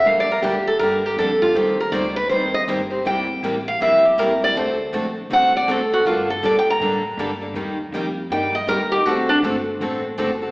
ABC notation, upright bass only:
X:1
M:4/4
L:1/8
Q:"Swing" 1/4=160
K:Gm
V:1 name="Upright bass" clef=bass
B,,,2 D,, z G,,2 F,,2 | E,,2 ^C,,2 =C,,2 G,,,2 | C,,2 A,,,2 B,,,2 C,,2 | D,,2 B,,,2 C,,2 D,,2 |
G,,2 B,,2 A,,2 G,,2 | E,,2 F,,2 G,,2 E,,2 | D,,2 G,,,2 A,,,2 ^F,,,2 |]